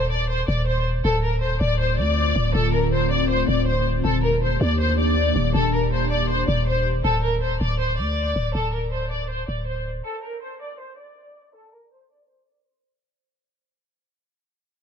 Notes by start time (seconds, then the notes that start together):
Already playing: D#1
0.11 D5
0.29 C5
0.48 D#1 D5
0.67 C5
1.05 D1 D3 A3 C4 F4 A4
1.23 A#4
1.42 D#1 C5
1.52 D1
1.61 D1 D5
1.80 C5
1.99 D2 D5
2.36 D1
2.55 D1 A4
2.73 A#4
2.92 C5
3.11 D5
3.30 C5
3.48 D1 D5
3.67 C5
4.04 D#1 D#3 A#3 D4 G4 A4
4.24 A#4
4.43 C5
4.61 D#2 D5
4.80 C5
4.99 D5
5.36 D#1
5.55 D#1 A4
5.74 A#4
5.92 C5
6.11 D5
6.29 C5
6.48 D#1 D5
6.68 C5
7.05 D1 A4
7.24 A#4
7.42 D#1 C5
7.52 D1
7.61 D1 D5
7.80 C5
7.98 D2 D5
8.36 D1
8.55 D1 A4
8.73 A#4
8.93 C5
9.11 D5
9.30 C5
9.48 D1 D5
9.67 C5
10.05 A4
10.23 A#4
10.43 C5
10.61 D5
10.80 C5
10.99 D5
11.55 A4
11.74 A#4
11.93 C5
12.11 D5
12.29 C5
12.48 D5
12.67 C5